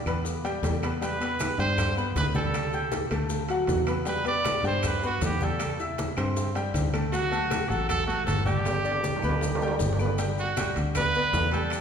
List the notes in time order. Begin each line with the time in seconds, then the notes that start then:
0.06 E2 B3 B4 B5, high bongo, high conga, high timbale, claves, maracas
0.25 high bongo, high conga, maracas
0.44 G3 G4 G5, high conga, high timbale, maracas
0.63 E2, high bongo, low bongo, high conga, high timbale, low timbale, maracas
0.83 B3 B4 B5, high bongo, high timbale, claves, maracas
1.01 G3 G4 B4 G5, high bongo, high conga, high timbale, maracas
1.20 B3 B4 B5, high conga, high timbale, maracas
1.40 high bongo, high conga, high timbale, claves, maracas
1.58 G2 G3 G4 C5 G5, maracas
1.78 high bongo, high conga, low conga, high timbale, claves, maracas
1.97 B3 B4 B5, high conga, maracas
2.15 D2 B4, high bongo, low bongo, high conga, high timbale, low timbale, maracas
2.34 G3 G4 A4 G5, high conga, maracas
2.54 high bongo, high conga, high timbale, claves, maracas
2.73 G4 G5 G6, high bongo, high conga, maracas
2.92 high bongo, high conga, high timbale, maracas
3.11 D2 A3 A4 A5, high bongo, high conga, high timbale, claves, maracas
3.29 high bongo, high conga, maracas
3.49 F#3 F#4 F#5, high conga, high timbale, maracas
3.67 E2, high bongo, low bongo, high conga, high timbale, low timbale, maracas
3.87 B3 B4 B5, high bongo, high timbale, claves, maracas
4.05 G3 G4 B4 G5, high bongo, high conga, high timbale, maracas
4.25 B3 B4 D5 B5, high conga, high timbale, maracas
4.44 high bongo, high conga, high timbale, claves, maracas
4.63 G2 G3 G4 G5, maracas
4.67 C5
4.83 high bongo, high conga, low conga, high timbale, claves, maracas
4.87 B4
5.03 B3 F#4 B4 B5, high conga, maracas
5.21 E2 G4, high bongo, low bongo, high conga, high timbale, low timbale, maracas
5.41 G3 G4 A4 G5, high conga, maracas
5.59 high bongo, high conga, high timbale, claves, maracas
5.79 E4 E5 E6, high bongo, high conga, maracas
5.98 high bongo, high conga, high timbale, maracas
6.17 G2 C4 C5 C6, high bongo, high conga, high timbale, claves, maracas
6.37 high bongo, high conga, maracas
6.55 G3 G4 G5, high conga, high timbale, maracas
6.74 D2, high bongo, low bongo, high conga, high timbale, maracas
6.94 A3 A4 A5, high bongo, high timbale, claves, maracas
7.12 F#3 F#4 F#5, high bongo, high conga, high timbale, maracas
7.31 A3 A4 A5, high conga, high timbale, maracas
7.50 high bongo, high conga, high timbale, claves, maracas
7.69 A1 F#3 F#4 A4 F#5, maracas
7.89 A4, high bongo, high conga, low conga, high timbale, claves, maracas
8.07 A3 F#4 A4 A5, high conga, maracas
8.26 G1 A4, high bongo, low bongo, high conga, high timbale, maracas
8.46 G3 G4 G5, high conga, maracas
8.65 high bongo, high conga, high timbale, claves, maracas
8.84 D4 D5 D6, high bongo, high conga, maracas
8.92 high timbale
9.04 high bongo, high conga, maracas
9.16 low timbale
9.22 D2 B3 B4 B5, high bongo, high conga, claves, maracas
9.29 low timbale
9.41 high bongo, high conga, low timbale, maracas
9.55 low timbale
9.61 G3 G4 G5, high conga, maracas
9.68 low timbale
9.79 G1, high bongo, low bongo, high conga, maracas
9.93 low timbale
9.99 B3 B4 B5, high bongo, claves, maracas
10.05 low timbale
10.18 G3 G4 G5, high bongo, high conga, high timbale, maracas
10.38 F#4, high conga, maracas
10.57 G3 G4 G5, high bongo, high conga, high timbale, claves, maracas
10.76 D2, high conga, high timbale, maracas
10.95 B3 B4 D5, high bongo, high conga, low conga, high timbale, claves, maracas
11.14 B3 B4 D5, high conga, maracas
11.33 E2, high bongo, low bongo, high conga, high timbale, low timbale, maracas
11.52 G3 G4 A4 G5, high conga, high timbale, maracas
11.70 high bongo, high conga, high timbale, claves, maracas